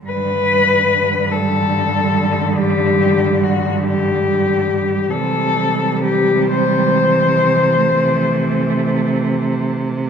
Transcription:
<<
  \new Staff \with { instrumentName = "Cello" } { \time 12/8 \key g \major \tempo 4. = 48 b'4. a'4. g'4 fis'8 g'4. | a'4 g'8 c''1 r8 | }
  \new Staff \with { instrumentName = "Cello" } { \clef bass \time 12/8 \key g \major g1. | g2. a2. | }
  \new Staff \with { instrumentName = "Cello" } { \clef bass \time 12/8 \key g \major d1. | e1. | }
  \new Staff \with { instrumentName = "Cello" } { \clef bass \time 12/8 \key g \major g,1. | c1. | }
>>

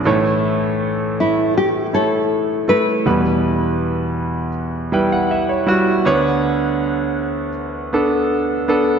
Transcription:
<<
  \new Staff \with { instrumentName = "Nylon-string guitar" } { \time 4/4 \key a \mixolydian \tempo 4 = 80 r4. e'8 g'8 a'4 b'8~ | b'2~ b'8 r4. | r1 | }
  \new Staff \with { instrumentName = "Grand piano" } { \time 4/4 \key a \mixolydian << { r1 | r2 r8 g''16 fis''16 e''16 cis''8. | r1 | } \\ { <a e' cis''>2 r8 <a e' cis''>4 <a e' a'>8 | <g e' b'>2 r8 <g e' b'>4 <g e' fis'>8 | <b d' cis''>2 r8 <b d' a'>4 <b d' a'>8 | } >> }
  \new Staff \with { instrumentName = "Grand piano" } { \clef bass \time 4/4 \key a \mixolydian <a, e>1 | <e, b,>1 | <d, d>1 | }
>>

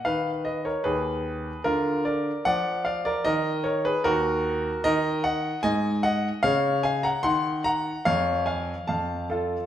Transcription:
<<
  \new Staff \with { instrumentName = "Grand piano" } { \time 2/4 \key ees \minor \tempo 4 = 75 <ces'' f''>8 <ces'' ees''>16 <bes' des''>16 <aes' ces''>4 | <f' bes'>8 <bes' d''>8 <d'' ges''>8 <d'' f''>16 <bes' d''>16 | <bes' ees''>8 <bes' des''>16 <aes' ces''>16 <ges' bes'>4 | \key f \phrygian <bes' ees''>8 <ees'' ges''>8 <ees'' aes''>8 <ees'' ges''>8 |
<des'' f''>8 <f'' aes''>16 <ges'' bes''>16 <ges'' c'''>8 <ges'' bes''>8 | <des'' f''>8 <f'' aes''>8 <f'' a''>8 <f' a'>8 | }
  \new Staff \with { instrumentName = "Grand piano" } { \clef bass \time 2/4 \key ees \minor ees4 ees,4 | d4 f4 | ees4 ees,4 | \key f \phrygian ees4 aes,4 |
des4 ees4 | f,4 f,4 | }
>>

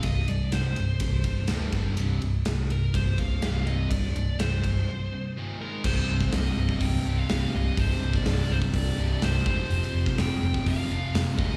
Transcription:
<<
  \new Staff \with { instrumentName = "Lead electric guitar" } { \time 4/4 \key c \minor \tempo 4 = 124 ees''8 d''8 c''2~ c''8 r8 | r4. bes'8 c''8 f''4 ees''8 | d''4 c''2 r8 bes'8 | c''4 ees''4 g''8. f''8. ees''8 |
c''8. d''8. c''8 d''4 c''8 c''8~ | c''4 g''4 f''4 f''8 ees''8 | }
  \new Staff \with { instrumentName = "Overdriven electric guitar" } { \clef bass \time 4/4 \key c \minor <c, g,>8 <c, g,>8 <c, g,>8 <c, g,>8 <c, g,>8 <c, g,>8 <d, a, d>8 <g, d g>8 | <c, g, c>8 <c, g,>8 <c, g,>8 <c, g,>8 <c, g,>8 <c, g,>8 <c, g, c>8 <c, g, c>8 | <c, g,>8 <c, g,>8 <c, g,>8 <c, g,>8 <c, g,>8 <c, g,>8 <ees, bes, ees>8 <aes, ees aes>8 | <c, g, c>2~ <c, g, c>8 <c, g, c>8 <c, g, c>4 |
<c, g, c>2~ <c, g, c>8 <c, g, c>8 <c, g, c>8 <f, c f>8~ | <f, c f>2 <f, c f>8 <f, c f>4 <ees, bes, ees>8 | }
  \new Staff \with { instrumentName = "Picked electric bass" } { \clef bass \time 4/4 \key c \minor c,,8 c,,8 c,,8 c,,8 c,,8 c,,8 d,,8 g,,8 | c,,8 c,,8 c,,4 c,,8 c,,8 c,,4 | c,,8 c,,8 c,,8 c,,8 r2 | c,,8 c,,8 c,,8 c,,8 c,,8 c,,8 c,,8 c,,8 |
c,,8 c,,8 c,,8 c,,8 c,,8 c,,8 c,,8 f,,8 | f,,8 f,,8 f,,8 f,,8 f,,8 f,,8 f,,8 ees,,8 | }
  \new DrumStaff \with { instrumentName = "Drums" } \drummode { \time 4/4 <bd cymr>8 cymr8 <cymr sn>8 cymr8 <bd cymr>8 <bd cymr>8 <cymr sn>8 <bd cymr>8 | cymr8 cymr8 <cymr sn>8 cymr8 <bd cymr>8 <bd cymr>8 <cymr sn>8 cymr8 | <bd cymr>16 sn16 cymr8 <cymr sn>8 <bd cymr>8 r4 r4 | <cymc bd>8. <bd sn>16 <hho sn>8. bd16 <hho bd>4 <hho sn>4 |
<hho bd>16 sn8 <bd sn>16 <hho sn>8. bd16 <hho bd>4 <hho sn>8 bd8 | hho16 sn8 <bd sn>16 <hho sn>8. bd16 <hho bd>4 <hho sn>8 bd8 | }
>>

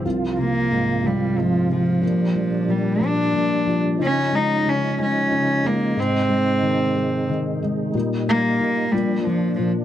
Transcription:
<<
  \new Staff \with { instrumentName = "Cello" } { \time 6/8 \key bes \mixolydian \tempo 4. = 61 r8 bes4 g8 f8 f8~ | f4 g8 d'4 r8 | des'8 ees'8 des'8 des'4 bes8 | c'2 r4 |
r8 bes4 g8 f8 f8 | }
  \new Staff \with { instrumentName = "Tonewheel organ" } { \time 6/8 \key bes \mixolydian f'2. | d'2. | ees'2.~ | ees'2.~ |
ees'4. d'4. | }
  \new Staff \with { instrumentName = "Tonewheel organ" } { \clef bass \time 6/8 \key bes \mixolydian << { f2. | g2. | f2. | aes2. |
g4. f4. | } \\ { c2. | bes,2. | des2. | c2. |
bes,2. | } >> }
  \new Staff \with { instrumentName = "Felt piano" } { \clef bass \time 6/8 \key bes \mixolydian c,8 c8 aes,8 c8 aes,8 c8 | bes,8 f8 bes,8 f8 bes,8 f8 | des8 aes8 des8 aes8 des8 aes8 | aes,8 aes8 ees8 aes8 ees8 aes8 |
bes,8 g8 bes,8 bes,8 f8 bes,8 | }
>>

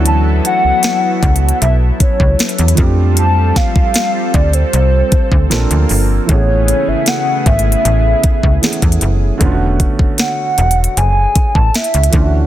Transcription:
<<
  \new Staff \with { instrumentName = "Soft synth lead" } { \time 4/4 \key e \mixolydian \tempo 4 = 77 a''8 fis''4. e''8 cis''4 r8 | a''8 f''4 d''16 c''4. r8. | cis''8. e''16 fis''8 e''2 r8 | r4 fis''4 gis''8. a''16 e''8. r16 | }
  \new Staff \with { instrumentName = "Analog synth pad" } { \time 4/4 \key e \mixolydian << { <b a'>2.~ <b a'>8 <c' a'>8~ | <c' a'>1 | <cis b gis'>1 | r1 | } \\ { <fis e'>2.~ <fis e'>8 <g f'>8~ | <g f'>2. <bes f'>4 | <a e'>1 | r1 | } >> }
  \new Staff \with { instrumentName = "Grand piano" } { \time 4/4 \key e \mixolydian <e a cis' d' fis'>2.~ <e a cis' d' fis'>8 <f a c' d' g'>8~ | <f a c' d' g'>2. <f bes c' d' a'>4 | <e a b cis' gis'>2. <e a b cis' gis'>4 | <d a b cis' f' fis'>2.~ <d a b cis' f' fis'>8 <e a cis' d' f' fis'>8 | }
  \new Staff \with { instrumentName = "FM bass" } { \clef bass \time 4/4 \key e \mixolydian d,8. cis,16 r8 cis,8 b,,8 r16 cis,16 r16 e,16 f,8~ | f,8. d,16 r8 d,8 c,8 r16 d,16 bes,,16 d,16 g,,8 | a,,8. gis,,16 r8 gis,,8 a,,8 r16 cis,16 r16 e,16 fis,,8 | e,,8. e,,16 r8 e,,8 fis,,8 r16 a,,16 r16 cis,16 d,8 | }
  \new DrumStaff \with { instrumentName = "Drums" } \drummode { \time 4/4 hh8 hh8 \tuplet 3/2 { <hh sn>16 r16 r16 <hh bd>16 hh16 hh16 } hh8 <hh bd>16 bd16 <hh sn>32 hh32 hh32 hh32 <hh bd>8 | hh8 <hh bd sn>16 bd16 <hh sn>8 <hh bd>16 hh16 hh8 <hh bd>16 bd16 <hh sn>16 hh16 hho8 | <hh bd>8 hh8 \tuplet 3/2 { <hh sn>16 r16 r16 <hh bd>16 hh16 hh16 } hh8 <hh bd>16 bd16 <hh sn>32 hh32 <hh bd>32 hh32 hh8 | <hh bd>8 <hh bd>16 bd16 \tuplet 3/2 { <hh sn>16 r16 r16 hh16 hh16 hh16 } hh8 <hh bd>16 bd16 <hh sn>32 hh32 hh32 hh32 <hh bd>8 | }
>>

